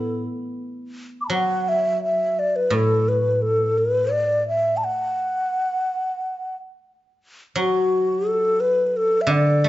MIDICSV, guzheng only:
0, 0, Header, 1, 2, 480
1, 0, Start_track
1, 0, Tempo, 704225
1, 894, Time_signature, 4, 2, 24, 8
1, 3287, Tempo, 686499
1, 6688, End_track
2, 0, Start_track
2, 0, Title_t, "Guzheng"
2, 0, Program_c, 0, 107
2, 0, Note_on_c, 0, 45, 55
2, 0, Note_on_c, 0, 57, 41
2, 0, Note_on_c, 0, 59, 38
2, 0, Note_on_c, 0, 64, 38
2, 163, Note_off_c, 0, 45, 0
2, 172, Note_off_c, 0, 57, 0
2, 419, Note_off_c, 0, 59, 0
2, 656, Note_off_c, 0, 64, 0
2, 884, Note_on_c, 0, 54, 47
2, 1843, Note_on_c, 0, 45, 47
2, 2331, Note_off_c, 0, 54, 0
2, 3279, Note_off_c, 0, 45, 0
2, 5198, Note_on_c, 0, 54, 52
2, 6394, Note_on_c, 0, 50, 54
2, 6639, Note_off_c, 0, 54, 0
2, 6657, Note_on_c, 0, 57, 38
2, 6688, Note_off_c, 0, 50, 0
2, 6688, Note_off_c, 0, 57, 0
2, 6688, End_track
0, 0, End_of_file